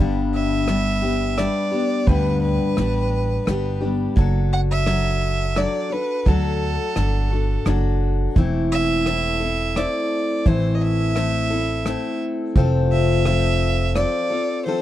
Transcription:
Already playing: G2
0.00 G1 D3 G3 B3 D4 G4
0.34 E5
0.67 G3 B3 D4 G4, cross-stick, closed hi-hat
1.02 G3 B3 D4 G4
1.37 G3 B3 D4 G4 D5, cross-stick, closed hi-hat
1.72 G3 B3 D4 G4
2.07 D2 G2 D3 G3 B3 D4 G4 B4, kick, closed hi-hat
2.42 B4
2.76 A1 G3 B3 D4 G4, cross-stick, closed hi-hat
3.46 G1 G3 B3 D4 G4, cross-stick, closed hi-hat
3.81 G3 B3 D4 G4
4.16 F#1 F#3 D4 F#4 A4, kick, closed hi-hat
4.53 F#5
4.71 E5
4.86 F#3 D4 F#4 A4, cross-stick, closed hi-hat
5.56 F#3 D4 F#4 A4 D5, cross-stick, closed hi-hat
5.90 D4 F#4 A4 B4
6.26 D2 F#3 D4 F#4 A4, kick, closed hi-hat
6.95 G1 F#3 D4 F#4 A4, cross-stick, closed hi-hat
7.30 D4 F#4 A4
7.65 F#1 F#3 D4 F#4 A4, cross-stick, closed hi-hat
8.36 E1 E3 A3 C4 E4 A4, kick, closed hi-hat
8.72 E5
9.05 A3 C4 E4 A4, cross-stick, closed hi-hat
9.40 C4 E4 A4
9.75 A3 C4 E4 A4 D5, cross-stick, closed hi-hat
10.46 A1 E3 A3 C4 E4 A4 C5, kick, closed hi-hat
10.75 D#5
10.82 E5
11.16 A3 C4 E4 A4, cross-stick, closed hi-hat
11.50 C4 E4 A4
11.85 A3 C4 E4 A4, cross-stick, closed hi-hat
12.56 F1 F3 C4 F4 A4, kick, closed hi-hat
12.92 E5
13.25 F3 C4 F4 A4, cross-stick, closed hi-hat
13.95 F3 C4 F4 A4 D5, cross-stick, closed hi-hat
14.30 C4 F4 A4
14.65 F3 C4 F4 A4 C5

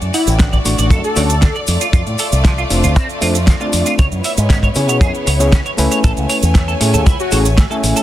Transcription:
Already playing: F#4 D5
0.02 F#2, closed hi-hat, cabasa
0.14 E4 F#5, open hi-hat, shaker
0.27 A1, closed hi-hat, cabasa, shaker
0.39 D4, kick, snare, closed hi-hat, cabasa, shaker
0.53 D5, kick, cabasa
0.65 A1 A3 D4 F#4 C#6, open hi-hat, shaker
0.78 A1 D5, closed hi-hat, cabasa, shaker
0.90 F#2 A4, kick, closed hi-hat, cabasa, shaker
1.04 A4, closed hi-hat, cabasa
1.16 D2 A3 C#4 D4 F#4 C#5 D5, open hi-hat, shaker
1.30 closed hi-hat, cabasa, shaker
1.42 D4, kick, snare, closed hi-hat, cabasa, shaker
1.55 D5, cabasa
1.67 F2 A3 F4, open hi-hat, shaker
1.81 F4, closed hi-hat, cabasa, shaker
1.93 F2 F4, kick, closed hi-hat, cabasa, shaker
2.07 A2, closed hi-hat, cabasa
2.19 A4, open hi-hat, shaker
2.32 C2, closed hi-hat, cabasa, shaker
2.44 F3, kick, snare, closed hi-hat, cabasa, shaker
2.58 F4, cabasa
2.70 F1 A3 C4 D4 F4 C5, open hi-hat, shaker
2.84 D2 F4, closed hi-hat, cabasa, shaker
2.96 A2 C4, kick, closed hi-hat, cabasa, shaker
3.09 closed hi-hat, cabasa
3.21 F2 A3 C4 D4 F4 C5, open hi-hat, shaker
3.35 closed hi-hat, cabasa, shaker
3.47 F3, kick, snare, closed hi-hat, cabasa, shaker
3.60 A3 C4 D4 F4 D5, cabasa
3.73 F2, open hi-hat, shaker
3.86 F4, closed hi-hat, cabasa, shaker
3.98 C#2 B3 E4 C#5, kick, closed hi-hat, cabasa, shaker
4.12 F#2, closed hi-hat, cabasa
4.24 E5, open hi-hat, shaker
4.37 G#2, closed hi-hat, cabasa, shaker
4.50 C#4, kick, snare, closed hi-hat, cabasa, shaker
4.63 C#5, kick, cabasa
4.75 C#3 B3 C#4 E4 G#4 C#5, open hi-hat, shaker
4.88 B2 C#5, closed hi-hat, cabasa, shaker
5.01 F#2 G#4, kick, closed hi-hat, cabasa, shaker
5.15 closed hi-hat, cabasa
5.27 C#2 C#5, open hi-hat, shaker
5.40 B3 C#4 E4 G#4 C#5, closed hi-hat, cabasa, shaker
5.52 C#4, kick, snare, closed hi-hat, cabasa, shaker
5.66 C#5, closed hi-hat, cabasa
5.77 C#2 A3 C#4 E4 B4 G#5, open hi-hat, shaker
5.92 C#5, closed hi-hat, cabasa, shaker
6.04 A1 A3 A4 C#5 G#5, kick, closed hi-hat, cabasa, shaker
6.17 C#2, closed hi-hat, cabasa
6.29 C#5, open hi-hat, shaker
6.43 E2, closed hi-hat, cabasa, shaker
6.55 A3, kick, snare, closed hi-hat, cabasa, shaker
6.68 A4, cabasa
6.80 A2 A3 C#4 E4 G#4 C#5, open hi-hat, shaker
6.94 E2 A4, closed hi-hat, cabasa, shaker
7.06 C#2 E4, kick, closed hi-hat, cabasa, shaker
7.20 F#4, closed hi-hat, cabasa
7.32 A1 A3 C#4 E4 G#4 A4 C#5, open hi-hat, shaker
7.45 closed hi-hat, cabasa, shaker
7.57 A3, kick, snare, closed hi-hat, cabasa, shaker
7.70 A3 C#4 E4 A4 E5 G#5, cabasa
7.83 A1, open hi-hat, shaker
7.96 A4, closed hi-hat, cabasa, shaker

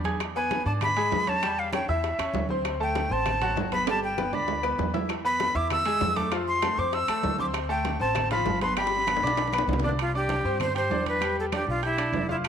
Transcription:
Already playing: E2
0.04 G#4 G#5 G#6, high bongo, high conga, high timbale
0.20 high bongo, high conga, high timbale, claves
0.35 B3 B4 G#5 B5, high conga
0.51 high bongo, high conga, high timbale, low timbale
0.66 G#2 D4 D5 A5 D6, high conga
0.81 B5, high bongo, high conga, low conga, high timbale, claves
0.96 G#3 G#4 G#5, high conga, high timbale
1.11 E2, high bongo, low bongo, high conga, low timbale
1.27 C#4 C#5 A5 C#6, high conga, high timbale
1.42 G3 G4 G5, high bongo, high timbale, claves
1.58 F5, high conga
1.73 C#4 C#5 G5 C#6, high bongo, high conga, high timbale, low timbale, claves
1.88 E2 E4 E5 E6, high bongo, high conga
2.03 high bongo, high conga, high timbale
2.19 E2 C#4 C#5 C#6, high bongo, high conga, high timbale, claves
2.34 D2, high bongo, low bongo, high conga, low timbale
2.49 C4 C5 C6, high bongo, high conga
2.64 high bongo, high conga, high timbale, claves
2.80 A3 A4 G5 A5, high conga
2.95 high bongo, high conga, high timbale, low timbale
3.10 A1 C4 C5 A5 C6, high conga
3.26 high bongo, high conga, low conga, high timbale, claves
3.41 F#3 F#4 F#5, high conga, low conga, high timbale
3.56 G1, high bongo, low bongo, high conga, low timbale
3.72 B3 B4 B5, high conga, high timbale
3.87 G3 G4 G5 A5, high bongo, high conga, high timbale, claves
4.03 G5, high conga
4.18 B3 B4 B5, high bongo, high conga, claves
4.33 D2 D4 D5 B5 D6, high bongo, high conga, low timbale
4.48 high bongo, high conga, low timbale
4.63 B3 B4 B5, high bongo, high conga, low timbale, claves
4.78 E2, high bongo, low bongo, high conga, low timbale
4.94 E4 E5 E6, high bongo, high conga, low timbale
5.09 high bongo, high conga, high timbale, claves
5.25 B3 B4 B5, high conga
5.40 high bongo, high conga, high timbale, low timbale
5.55 E2 E4 E5 D6 E6, high conga
5.70 E6, high bongo, high conga, low conga, high timbale, claves
5.85 G#3 G#4 G#5, high conga, high timbale
6.01 F2, high bongo, low bongo, high conga, low timbale
6.16 A3 A4 A5 D6, high conga, high timbale
6.32 F3 F4 F5, high bongo, high conga, high timbale, claves
6.48 C6, high conga
6.62 A3 A4 A5, high bongo, high conga, high timbale, low timbale, claves
6.78 F2 C4 C5 C6 D6, high bongo, high conga
6.93 E6, high bongo, high conga, high timbale
7.08 E2 A3 A4 A5, high bongo, high conga, high timbale, claves
7.23 D2, high bongo, low bongo, high conga, low timbale
7.38 C4 C5 C6 D6, high bongo, high conga
7.54 high bongo, high conga, high timbale, claves
7.69 A3 A4 G5 A5, high conga
7.85 high bongo, high conga, high timbale, low timbale
8.00 A1 C4 C5 A5 C6, high conga
8.15 high bongo, high conga, low conga, high timbale, claves
8.31 F3 F4 F5 B5, high conga, low conga, high timbale
8.46 G1, high bongo, low bongo, high conga, low timbale
8.61 B3 B4 B5 C6, high conga, high timbale
8.77 G3 G4 G5 B5, high bongo, high timbale, claves
8.87 high bongo
8.92 high conga
8.97 high bongo
9.07 B3 B4 B5, high conga, high timbale, low timbale, claves
9.16 low bongo
9.22 B1 D4 D5 D6, high conga
9.27 low bongo
9.37 low bongo, high conga, high timbale
9.47 low bongo
9.53 B3 B4 B5, high conga, high timbale, claves
9.58 low bongo
9.67 C2, low bongo, low timbale
9.73 low conga
9.79 low bongo, low conga
9.84 D4 D5 D6
9.89 low bongo
9.98 F4, high conga, high timbale, claves
10.14 D4 G4 D5 D6, high conga
10.29 high conga, high timbale, low timbale
10.44 G2 C4 C5 C6, high conga
10.60 C5, high conga, low conga, high timbale, claves
10.75 G4 C5 G5 G6, high conga, high timbale
10.90 E2 D4 D5 D6, high conga, low timbale
11.06 B4, high conga, high timbale
11.21 G3 G4 G5, high conga, high timbale, claves
11.37 A4, high conga
11.52 D4 G4 D5 D6, high conga, high timbale, low timbale, claves
11.67 B1 F4, high conga
11.83 E4 G4 G5 G6, high conga, high timbale
11.98 D4 D5 D6, high conga, high timbale, claves
12.13 F1, high conga, low timbale
12.29 E4 F4 F5 F6, high conga
12.44 high conga, high timbale, claves

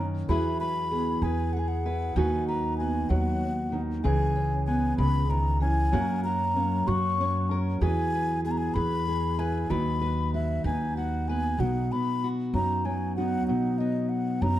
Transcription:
Already playing: F#2 D#3 A#3 C#4 F#4 A#4
0.29 E2 E3 F#3 E4 G#4 B4 B5
0.60 B4 B5
0.92 B3 G#4
1.22 E2 G#4 B4 G#5
1.53 G#4 F#5
1.59 G#5
1.68 F#5
1.86 E4 B4
2.16 D#2 D#3 F#3 D#4 F#4 B4 G#5
2.48 B4 A#5
2.77 B3 F#4 G#5
3.09 D#2 F#3 F#4 F#5
3.72 D#3 D#4
4.04 C#2 C#3 E3 G#4 G#5
4.36 C#4
4.66 B3 G#5
4.98 C#2 C#3 G#4 B5
5.29 D#3 A#5
5.60 E3 C#4 G#5
5.92 F#2 F#3 A#3 C#4 F#4 A#4
6.24 F#4 A#5
6.56 A#3 C#4
6.87 F#2 F#4 C#6
7.21 C#4
7.49 C#4 A#4
7.81 E2 E3 F#3 G#4 B4 G#5
8.15 B4
8.44 B3 G#4 G#5
8.51 A#5
8.58 G#5
8.74 E2 G#4 B4 B5
9.08 G#4
9.38 E4 B4 G#5
9.70 D#2 D#3 F#3 B4 B5
10.01 B4
10.34 F#3 F#4 E5
10.64 D#2 D#4 B4 G#5
10.97 F#4 F#5
11.28 B3 B4 G#5
11.59 B1 B2 F#3 D#4 F#5
11.92 B3 B5
12.24 F#4
12.54 F#2 F#3 B3 D#4 A#5
12.85 F#3 G#5
13.16 F#3 B3 D#4 F#5
13.48 B1 B2 F#3 D#4 F#5
13.78 B3 D#5
14.09 F#5
14.42 F#2 F#3 B3 D#4 A#5

